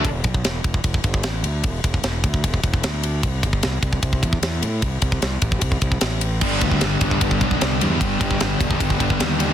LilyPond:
<<
  \new Staff \with { instrumentName = "Distorted electric guitar" } { \time 4/4 \key g \major \tempo 4 = 151 r1 | r1 | r1 | r1 |
<g b d' g'>8 <g b d' g'>8 <g b d' g'>8 <g b d' g'>8 <g b d' g'>8 <g b d' g'>8 <g b d' g'>8 <g b d' g'>8 | <g b d' g'>8 <g b d' g'>8 <g b d' g'>8 <g b d' g'>8 <g b d' g'>8 <g b d' g'>8 <g b d' g'>8 <g b d' g'>8 | }
  \new Staff \with { instrumentName = "Distorted electric guitar" } { \clef bass \time 4/4 \key g \major r1 | r1 | r1 | r1 |
<g, d g>8 <g, d>16 <g, d>16 <g, d>8 <g, d>16 <g, d>16 <g, d>8 <g, d>16 <g, d>16 <g, d>8 <g, d>16 <g, d>16 | <g, d>8 <g, d>16 <g, d>16 <g, d>8 <g, d>16 <g, d>16 <g, d>8 <g, d>16 <g, d>16 <g, d>8 <g, d>16 <g, d>16 | }
  \new Staff \with { instrumentName = "Fingered electric bass" } { \clef bass \time 4/4 \key g \major e,,8 b,,8 e,,8 e,,8 e,,8 g,,8 a,,8 d,8 | e,,8 e,,8 e,,8 d,8 e,,8 e,,8 d,4 | c,8 g,,8 c,8 c,8 c,8 e,8 e,8 a,8 | c,8 c,8 c,8 a,,8 c,8 c,8 a,,4 |
g,,8 d,8 g,,8 g,,8 g,,8 b,,8 c,8 e,8 | g,,8 g,,8 g,,8 e,,8 g,,8 g,,8 dis,4 | }
  \new DrumStaff \with { instrumentName = "Drums" } \drummode { \time 4/4 <bd cymr>8 <bd cymr>16 bd16 <cymr sn>8 <bd cymr>16 bd16 <bd cymr>16 bd16 <bd cymr>16 bd16 <cymr sn>8 cymr8 | <bd cymr>8 <bd cymr>16 bd16 <cymr sn>8 <bd cymr>16 bd16 <bd cymr>16 bd16 <bd cymr>16 bd16 <cymr sn>8 cymr8 | <bd cymr>8 <bd cymr>16 bd16 <cymr sn>8 <bd cymr>16 bd16 <bd cymr>16 bd16 <bd cymr>16 bd16 <cymr sn>8 cymr8 | <bd cymr>8 <bd cymr>16 bd16 <cymr sn>8 <bd cymr>16 bd16 <bd cymr>16 bd16 <bd cymr>16 bd16 <cymr sn>8 cymr8 |
<cymc bd>8 <bd cymr>16 bd16 <cymr sn>8 <bd cymr>16 bd16 <bd cymr>16 bd16 <bd cymr>16 bd16 <cymr sn>8 cymr8 | <bd cymr>8 <bd cymr>16 bd16 <cymr sn>8 <bd cymr>16 bd16 <bd cymr>16 bd16 <bd cymr>16 bd16 <cymr sn>8 cymr8 | }
>>